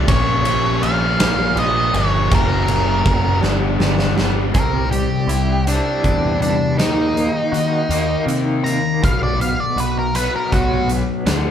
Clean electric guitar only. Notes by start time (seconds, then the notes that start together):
4.54 C3
4.92 G3
5.29 E4
5.66 G3
6.02 E3
6.40 G3
6.78 D#3
7.15 A#3
7.52 F#4
7.90 A#3
8.27 D#3
8.63 A#3
9.02 B2
9.39 B3
9.77 F#4
10.15 B3
10.52 F#3
10.89 B3
11.26 D3